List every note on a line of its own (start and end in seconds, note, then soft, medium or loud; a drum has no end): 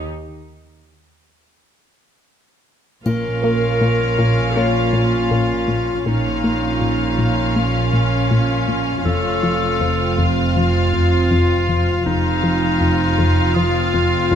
3.05 6.01 A#1 soft
3.05 3.28 A#2 medium
3.05 6.02 A#2 soft
3.05 6.02 C#4 soft
3.05 6.01 F4 soft
3.05 4.58 A#4 medium
3.05 6.02 F5 soft
3.05 triangle soft
3.42 3.66 A#3 soft
3.42 5.64 A#4 soft
3.81 4.03 A#2 soft
4.19 4.41 A#2 medium
4.55 4.79 A#3 soft
4.55 6.77 C#4 soft
4.55 6.06 F4 soft
4.55 6.77 C#5 soft
4.93 5.16 A#2 soft
5.31 5.54 A#2 medium
5.68 5.90 A#2 soft
6.05 9.02 A#1 soft
6.05 9.02 A#2 soft
6.05 6.28 A#2 medium
6.05 9.77 C#4 soft
6.05 7.57 D#4 soft
6.05 9.02 F4 soft
6.05 9.03 F5 soft
6.44 6.66 A#3 soft
6.81 7.04 A#2 soft
7.18 7.41 A#2 medium
7.55 7.78 A#3 soft
7.55 9.04 C#4 medium
7.93 8.16 A#2 soft
8.31 8.53 A#2 medium
8.68 8.91 A#2 soft
9.05 12.03 F1 soft
9.05 9.28 F2 medium
9.05 12.05 F2 soft
9.05 12.01 F4 soft
9.05 10.25 A4 medium
9.05 12.02 F5 soft
9.43 9.66 F3 soft
9.80 10.03 F2 soft
9.80 12.04 C4 soft
9.80 12.02 C4 soft
9.80 12.02 C5 soft
10.18 10.41 F2 medium
10.56 10.79 F3 soft
10.56 12.02 F4 medium
10.93 11.16 F2 soft
11.31 11.54 F2 medium
11.69 11.91 F2 soft
12.04 14.35 F1 soft
12.04 14.35 F2 medium
12.04 12.29 F2 medium
12.04 14.35 C4 soft
12.04 13.56 D#4 medium
12.04 14.35 F4 soft
12.04 14.35 F5 soft
12.44 12.66 F3 soft
12.81 13.03 F2 soft
13.19 13.41 F2 medium
13.54 13.79 F3 soft
13.54 14.35 F4 medium
13.54 14.35 D#6 soft
13.94 14.16 F2 medium
14.31 14.35 F2 medium